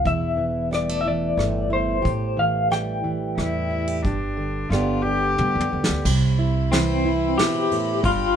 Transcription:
0.04 1.34 E1 medium
0.04 2.04 E2 medium
0.04 1.69 E4 medium
0.04 0.68 E5 medium
0.04 kick medium
0.04 closed hi-hat soft
0.37 1.05 E3 medium
0.71 0.89 G3 medium
0.71 1.00 D5 medium
0.71 cross-stick medium
0.71 closed hi-hat soft
0.89 1.36 A3 soft
1.01 1.06 E5 medium
1.05 2.01 E3 medium
1.05 1.73 D5 medium
1.37 2.00 G1 medium
1.37 2.00 A3 medium
1.37 cross-stick medium
1.37 closed hi-hat soft
1.70 2.02 E4 medium
1.70 2.41 C5 medium
2.02 3.34 A1 medium
2.02 4.03 A2 medium
2.02 3.70 G4 medium
2.02 kick medium
2.02 closed hi-hat soft
2.37 3.03 E3 medium
2.37 2.71 F5 medium
2.70 3.38 G3 medium
2.70 5.34 G5 medium
2.70 cross-stick medium
2.70 closed hi-hat soft
3.04 4.00 E3 medium
3.38 4.00 E2 medium
3.38 4.71 G3 medium
3.38 4.04 E4 medium
3.38 cross-stick medium
3.38 closed hi-hat soft
3.71 3.88 E4 medium
3.88 4.03 G4 soft
4.03 4.67 G1 medium
4.03 4.67 G2 medium
4.03 4.71 D4 medium
4.03 4.67 G4 medium
4.03 kick medium
4.03 closed hi-hat soft
4.37 4.70 D3 medium
4.69 5.34 G1 medium
4.69 6.01 G2 medium
4.69 5.04 D3 medium
4.69 5.38 B3 medium
4.69 6.02 D4 medium
4.69 5.03 F4 medium
4.69 cross-stick medium
4.69 closed hi-hat soft
4.74 6.02 G4 medium
5.02 5.71 D3 medium
5.02 6.03 G4 loud
5.38 5.53 G2 medium
5.38 6.01 B3 medium
5.38 high tom soft
5.55 5.70 F2 medium
5.60 mid tom soft
5.72 5.87 E2 medium
5.72 6.05 D3 medium
5.84 snare medium
5.89 6.04 D2 medium
6.05 7.33 C2 medium
6.05 6.71 C3 medium
6.05 8.01 E4 medium
6.05 8.01 C5 medium
6.05 8.36 B5 medium
6.05 kick medium
6.05 crash medium
6.39 7.04 E4 medium
6.72 7.99 E3 medium
6.72 7.39 C4 medium
6.72 snare medium
6.72 ride medium
7.05 8.04 E4 medium
7.38 7.71 B2 medium
7.38 7.99 G4 loud
7.38 snare medium
7.38 ride soft
7.71 8.04 A2 medium
7.71 ride soft
8.02 8.36 G1 medium
8.02 8.36 G2 medium
8.02 8.36 F4 medium
8.02 8.36 G4 medium
8.02 8.36 G5 medium
8.02 kick medium
8.02 ride soft

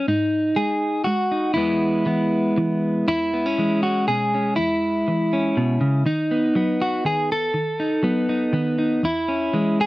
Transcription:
0.08 0.52 G#2 medium
0.08 1.06 D#4 medium
0.56 1.01 G#3 medium
0.56 1.04 G#4 medium
1.04 1.51 G#3 medium
1.04 1.53 F#4 loud
1.32 1.53 D#4 soft
1.54 2.01 E2 medium
1.54 2.05 E3 soft
1.54 3.58 G#3 soft
1.54 2.06 B3 soft
1.54 3.07 E4 medium
2.06 2.52 E3 medium
2.06 3.32 B3 soft
2.58 3.03 E3 medium
3.08 3.53 E2 medium
3.08 3.83 E4 loud
3.33 3.46 B3 soft
3.46 4.33 C#4 soft
3.58 4.03 E3 medium
3.58 6.06 G#3 soft
3.83 4.07 F#4 medium
4.08 4.53 B2 medium
4.08 4.56 G#4 loud
4.34 4.56 C#4 soft
4.56 5.03 E2 medium
4.56 6.04 E4 medium
5.08 5.52 E3 medium
5.33 6.03 C#4 soft
5.57 5.80 B2 medium
5.81 6.05 C#3 medium
6.06 6.50 D#3 medium
6.06 7.29 D#4 medium
6.31 6.56 B3 soft
6.55 7.00 F#3 medium
6.55 7.51 B3 soft
6.82 7.05 F#4 medium
7.05 7.49 D#3 medium
7.05 7.30 G#4 loud
7.32 9.05 A4 loud
7.54 7.98 D#3 medium
7.80 8.29 D#4 soft
8.03 8.48 F#3 medium
8.03 8.53 B3 soft
8.29 8.78 D#4 soft
8.53 8.98 D#3 medium
8.53 9.01 B3 soft
8.78 9.06 D#4 soft
9.03 9.49 E2 medium
9.03 9.80 E4 medium
9.28 9.86 C#4 soft
9.54 9.86 E3 medium
9.54 9.86 G#3 soft
9.81 9.86 G#4 medium

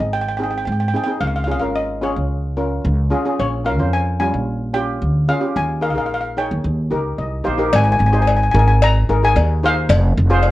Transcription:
0.00 0.64 G#1 medium
0.00 0.17 C4 medium
0.00 0.18 D#4 medium
0.00 0.18 G#4 medium
0.00 0.07 D#5 soft
0.13 0.20 G5 medium
0.21 0.27 G5 medium
0.28 0.36 G5 medium
0.37 0.72 C4 medium
0.37 0.72 D#4 medium
0.37 0.72 G#4 medium
0.37 0.42 G5 medium
0.44 0.49 G5 medium
0.51 0.56 G5 medium
0.58 0.64 G5 medium
0.65 0.93 G#2 medium
0.65 0.71 G5 soft
0.72 0.79 G5 medium
0.80 0.87 G5 medium
0.88 0.95 G5 medium
0.94 1.02 C4 medium
0.94 1.02 D#4 medium
0.94 1.02 G#4 medium
0.94 1.03 G5 medium
1.04 1.21 C4 medium
1.04 1.21 D#4 medium
1.04 1.11 G5 medium
1.08 1.21 G#4 medium
1.21 1.62 C#2 medium
1.21 1.26 F5 medium
1.27 1.35 F5 medium
1.36 1.43 F5 medium
1.44 1.56 C#4 medium
1.44 1.56 F4 medium
1.44 1.56 G#4 medium
1.44 1.50 F5 medium
1.52 1.58 F5 medium
1.60 2.14 G#1 medium
1.60 1.86 C#4 medium
1.60 1.86 F4 medium
1.60 1.86 A#4 medium
1.60 1.67 F5 medium
1.76 2.04 D#5 medium
2.01 2.35 C#4 medium
2.01 2.35 F4 medium
2.01 2.35 G#4 medium
2.01 2.80 C#5 medium
2.16 2.81 C#2 medium
2.57 2.90 C#4 medium
2.57 2.90 F4 medium
2.57 2.90 A#4 medium
2.85 3.10 C#2 medium
3.10 3.19 C#4 medium
3.10 3.19 F4 medium
3.10 3.20 G#4 medium
3.25 3.39 C#4 medium
3.25 3.39 F4 medium
3.25 3.39 G#4 medium
3.39 3.80 A#1 medium
3.39 3.67 C#5 medium
3.65 3.73 C#4 medium
3.65 3.74 F4 medium
3.65 3.74 A#4 medium
3.65 3.94 F5 medium
3.78 4.31 F2 medium
3.78 4.03 C#4 medium
3.78 4.04 F4 medium
3.78 4.04 C5 medium
3.93 4.18 G#5 medium
4.19 4.53 G3 medium
4.19 4.52 C#4 medium
4.19 4.53 F4 medium
4.19 4.76 G#5 medium
4.34 4.98 A#1 medium
4.73 5.07 C#4 medium
4.73 5.07 F4 medium
4.73 5.07 G4 medium
4.73 5.30 G5 medium
5.02 5.27 D2 medium
5.28 5.37 C#4 medium
5.28 5.37 F4 medium
5.28 5.37 G#4 medium
5.28 5.57 F5 medium
5.40 5.55 C#4 medium
5.40 5.55 F4 medium
5.40 5.55 G4 medium
5.56 5.97 D#2 medium
5.56 5.84 G#5 medium
5.81 5.90 D#4 medium
5.81 5.91 G#4 medium
5.81 5.91 A#4 medium
5.81 5.89 F5 medium
5.90 5.97 F5 medium
5.95 6.48 A#1 medium
5.95 6.20 D#4 medium
5.95 6.20 G#4 medium
5.95 6.21 A#4 medium
5.95 6.05 F5 medium
6.06 6.13 F5 medium
6.14 6.20 F5 medium
6.21 6.29 F5 medium
6.37 6.64 D#4 medium
6.37 6.65 G#4 medium
6.37 6.65 C#5 medium
6.37 7.42 G5 medium
6.51 6.64 D#2 medium
6.64 6.90 D#2 medium
6.91 7.16 C#2 medium
6.91 7.24 D#4 medium
6.91 7.24 G4 medium
6.91 7.24 A#4 medium
7.19 7.43 C2 medium
7.19 7.44 D#5 medium
7.44 7.71 A#1 medium
7.44 7.53 D#4 medium
7.44 7.54 G4 medium
7.44 7.54 C5 medium
7.44 7.70 F5 medium
7.58 7.72 D#4 medium
7.58 7.73 G4 medium
7.58 7.73 A#4 medium
7.73 7.99 G#1 loud
7.73 7.82 G#5 medium
7.73 cowbell medium
7.84 7.90 G#5 medium
7.92 7.98 G#5 medium
7.99 8.51 G#1 medium
7.99 8.05 G#5 medium
8.06 8.12 G#5 medium
8.12 8.37 D#4 medium
8.12 8.38 G#4 medium
8.12 8.38 C5 medium
8.12 8.20 G#5 medium
8.22 8.28 G#5 medium
8.27 8.35 G#5 medium
8.27 cowbell medium
8.36 8.42 G#5 medium
8.43 8.50 G#5 medium
8.51 9.06 G#1 loud
8.51 8.87 D#4 medium
8.51 8.87 G#4 medium
8.51 8.87 A#4 medium
8.51 8.57 G#5 medium
8.59 8.65 G#5 medium
8.68 8.73 G#5 medium
8.82 9.24 A#5 loud
8.82 cowbell loud
9.09 9.34 G#1 medium
9.09 9.17 D#4 medium
9.09 9.17 G#4 medium
9.09 9.17 A#4 medium
9.23 9.47 D#4 medium
9.23 9.47 G#4 medium
9.23 9.47 A#4 medium
9.23 9.65 G#5 loud
9.36 9.87 D#2 loud
9.36 cowbell medium
9.63 9.90 D#4 medium
9.63 9.90 G#4 medium
9.63 9.90 C5 medium
9.63 10.51 F5 medium
9.89 10.15 F1 loud
9.89 cowbell medium
10.17 10.51 F1 loud
10.30 10.51 F4 medium
10.30 10.51 G#4 medium
10.30 10.51 C5 loud
10.43 cowbell medium

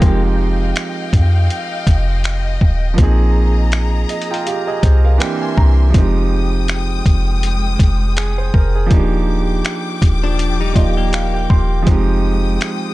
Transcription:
0.00 0.73 F1 loud
0.00 2.92 F3 medium
0.00 2.93 G#3 medium
0.00 0.22 A#3 medium
0.00 2.94 C4 medium
0.00 0.21 G4 medium
0.00 0.21 A#4 medium
0.00 5.16 D#5 medium
0.00 2.95 F5 medium
0.00 2.95 G5 medium
0.00 kick loud
0.00 closed hi-hat medium
0.04 2.95 D#4 medium
0.04 2.96 G4 medium
0.76 finger snap loud
0.76 closed hi-hat medium
1.13 1.49 F2 loud
1.13 kick loud
1.13 closed hi-hat medium
1.50 closed hi-hat medium
1.87 2.58 F1 loud
1.87 kick medium
1.87 closed hi-hat medium
2.24 finger snap loud
2.24 closed hi-hat medium
2.61 2.97 D#1 loud
2.61 kick medium
2.94 5.14 F3 medium
2.94 5.15 A#3 medium
2.98 4.05 A#1 loud
2.98 5.16 C4 medium
2.98 5.18 D#4 medium
2.98 5.18 G#4 medium
2.98 5.18 A#5 medium
2.98 kick loud
2.98 closed hi-hat medium
3.03 4.09 G#4 medium
3.72 finger snap loud
3.72 closed hi-hat medium
4.09 4.29 D#5 medium
4.09 closed hi-hat medium
4.22 closed hi-hat medium
4.31 4.46 F4 medium
4.31 4.45 G5 medium
4.31 closed hi-hat medium
4.46 4.67 G4 medium
4.46 4.66 F5 medium
4.46 closed hi-hat medium
4.67 4.82 G#4 medium
4.67 5.02 D#5 medium
4.83 5.19 C2 loud
4.83 5.04 C5 medium
4.83 kick medium
4.83 closed hi-hat medium
5.04 5.40 A#4 medium
5.04 5.19 F5 medium
5.18 5.93 E3 medium
5.18 5.94 A#3 medium
5.18 5.93 C4 medium
5.18 5.95 D4 medium
5.18 5.94 A#4 medium
5.18 5.94 E5 medium
5.18 5.40 G5 medium
5.18 5.94 C6 medium
5.18 finger snap loud
5.18 closed hi-hat medium
5.22 5.95 G4 medium
5.42 5.56 G#5 medium
5.57 5.93 C2 loud
5.57 5.92 A#5 medium
5.57 kick loud
5.90 7.74 F3 medium
5.90 7.75 G#3 medium
5.94 7.02 F1 loud
5.94 8.88 G#3 medium
5.94 7.76 C4 medium
5.94 7.77 D#4 medium
5.94 8.88 G5 medium
5.94 8.88 D#6 medium
5.94 kick loud
5.94 closed hi-hat medium
5.99 7.78 G4 medium
6.68 finger snap loud
6.68 closed hi-hat medium
7.06 7.77 F1 loud
7.06 kick loud
7.06 closed hi-hat medium
7.43 closed hi-hat medium
7.79 8.51 F1 medium
7.79 kick medium
7.79 closed hi-hat medium
8.17 8.37 G#4 medium
8.17 finger snap loud
8.17 closed hi-hat medium
8.38 8.53 C5 medium
8.54 8.90 F1 loud
8.54 8.74 A#4 medium
8.54 kick loud
8.75 9.10 G#4 medium
8.86 10.70 F3 medium
8.86 10.71 A#3 medium
8.91 9.62 D#1 loud
8.91 10.72 D4 medium
8.91 10.74 D#4 medium
8.91 11.84 G4 medium
8.91 11.84 G5 medium
8.91 11.84 D6 medium
8.91 kick loud
8.91 closed hi-hat medium
8.95 10.75 G4 medium
9.65 finger snap loud
9.65 closed hi-hat medium
10.02 10.73 D#1 loud
10.02 kick loud
10.02 closed hi-hat medium
10.24 10.59 F3 medium
10.24 10.59 D4 medium
10.39 closed hi-hat medium
10.61 10.76 G3 medium
10.61 10.75 D#4 medium
10.74 11.47 D#1 loud
10.74 11.81 F3 medium
10.74 11.87 A#3 medium
10.74 11.88 D#4 medium
10.74 10.96 F4 medium
10.74 11.87 D5 medium
10.74 11.10 D#5 medium
10.74 kick medium
10.74 closed hi-hat medium
10.78 11.88 G4 medium
10.97 11.83 A#3 medium
10.97 11.83 G4 medium
11.13 11.33 F5 medium
11.13 finger snap loud
11.13 closed hi-hat medium
11.34 11.49 G5 medium
11.50 11.86 D#1 loud
11.50 11.84 C6 medium
11.50 kick loud
11.82 12.94 F3 medium
11.82 12.94 G#3 medium
11.87 12.58 F1 loud
11.87 12.94 G#3 medium
11.87 12.94 C4 medium
11.87 12.94 D#4 medium
11.87 12.94 G5 medium
11.87 12.94 D#6 medium
11.87 kick loud
11.87 closed hi-hat medium
11.91 12.94 G4 medium
12.61 finger snap loud
12.61 closed hi-hat medium

